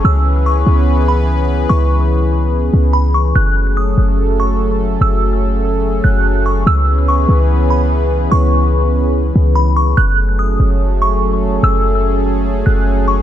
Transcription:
Already playing: C#4 G#4
0.05 C#2 E3 B3 B4 E6
0.46 C#6
0.67 C#2
1.08 B5
1.69 C#2 C#6
2.74 C#2
2.93 B5
3.14 C#6
3.35 F#1 F#3 A3 C#4 A4 F#6
3.77 D#6
3.98 F#1
4.40 C#6
5.01 F#1 E6
6.04 F#1 F#6
6.46 C#6
6.67 C#2 E3 B3 G#4 B4 E6
7.08 C#6
7.29 C#2
7.70 B5
8.32 C#2 C#6
9.36 C#2
9.55 B5
9.77 C#6
9.97 F#1 F#3 A3 C#4 G#4 A4 F#6
10.39 D#6
10.60 F#1
11.02 C#6
11.63 F#1 E6
12.66 F#1 F#6
13.08 C#6

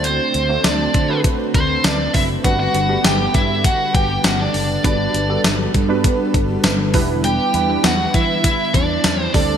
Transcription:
Already playing: D2 D3 A3 C4 D4 F#4 A4 C5
0.04 C4 C5, closed hi-hat
0.34 D2, closed hi-hat
0.49 A3 C4 D4 F#4 C5
0.63 D2 D4 D5, snare, closed hi-hat, tambourine
0.94 D3, kick, closed hi-hat
1.09 A3 C4 D4 F#4 B4
1.24 kick, closed hi-hat
1.54 D2 C4 C5, kick, closed hi-hat
1.84 D2 D4 D5, snare, closed hi-hat, tambourine
2.14 F#1 E4 E5, kick, open hi-hat
2.44 G1 G3 B3 D4 F#4 B4 F#5, kick, closed hi-hat
2.59 F#4 F#5
2.74 G1 G3 B3 D4 F#4 B4, closed hi-hat
2.89 G3 B3 D4 G4 B4
3.04 G1 G4 G5, snare, closed hi-hat, tambourine
3.34 G2 E4 E5, kick, closed hi-hat
3.64 F#4 F#5, kick, closed hi-hat
3.95 G1 G4 G5, kick, closed hi-hat
4.24 G1 F#4 F#5, snare, closed hi-hat, tambourine
4.39 D4 D5
4.54 F#1, open hi-hat
4.84 G1 G3 B3 D4 F#4 B4 D5, kick, closed hi-hat
5.14 G1, closed hi-hat
5.29 G3 B3 D4 F#4 A4
5.44 G1, snare, closed hi-hat, tambourine
5.74 G2, kick, closed hi-hat
5.89 G3 B3 D4 F#4 B4
6.04 kick, closed hi-hat
6.34 G1, kick, closed hi-hat
6.64 G1, snare, closed hi-hat, tambourine
6.94 E1 G3 B3 D4 E4 B4, kick, open hi-hat
7.24 G4 G5, closed hi-hat
7.54 E2 G3 B3 D4 E4 B4, closed hi-hat
7.69 G3 B3 D4 E4 B4
7.84 E2 F#4 F#5, snare, closed hi-hat, tambourine
8.14 E3 E4 E5, kick, closed hi-hat
8.44 E4 E5, kick, closed hi-hat
8.74 E2 D4 D5, kick, closed hi-hat
9.04 E2, snare, closed hi-hat, tambourine
9.17 C4
9.22 C5
9.34 D2 G3 A3 C4 D4 A4 D5, kick, open hi-hat

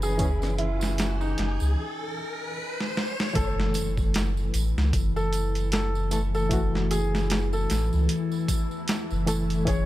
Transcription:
Already playing: F#1 E3 C#4 B4 G#5, riser
0.02 G#4, tambourine
0.17 E3 C#4, kick, closed hi-hat, tambourine
0.22 G#4
0.42 snare, tambourine
0.58 E4, closed hi-hat
0.81 snare, tambourine
0.98 snare, closed hi-hat, tambourine
1.21 D#4, tambourine
1.38 F#1, snare, closed hi-hat
1.60 C#2, tambourine
2.81 snare
2.97 snare
3.20 snare
3.33 F#1 E3 A3 E4 A4, kick, closed hi-hat, tambourine, impact
3.37 A4
3.60 snare
3.74 closed hi-hat, tambourine
3.97 kick, tambourine
4.14 snare, closed hi-hat, tambourine
4.37 tambourine
4.54 A1, closed hi-hat, tambourine
4.77 C#2, snare, tambourine
4.93 F#1, kick, closed hi-hat, tambourine
5.16 A4, tambourine
5.33 closed hi-hat, tambourine
5.55 closed hi-hat, tambourine
5.72 A4, snare, closed hi-hat, tambourine
5.95 tambourine
6.11 E3 A3 A4, closed hi-hat, tambourine
6.34 A4, tambourine
6.49 E3 A3 F#4, kick, closed hi-hat, tambourine
6.75 snare
6.91 G#4, closed hi-hat, tambourine
7.15 snare, tambourine
7.30 snare, closed hi-hat, tambourine
7.53 A4, tambourine
7.70 A1, snare, closed hi-hat, tambourine
7.93 C#2, tambourine
8.09 closed hi-hat, tambourine
8.32 tambourine
8.48 kick, closed hi-hat, tambourine
8.71 tambourine
8.88 snare, closed hi-hat, tambourine
9.11 F#1, tambourine
9.26 E3 A3 A4, closed hi-hat, tambourine
9.50 closed hi-hat, tambourine
9.65 F#1 E3 C#4 C#5, kick, closed hi-hat, tambourine
9.69 G#4

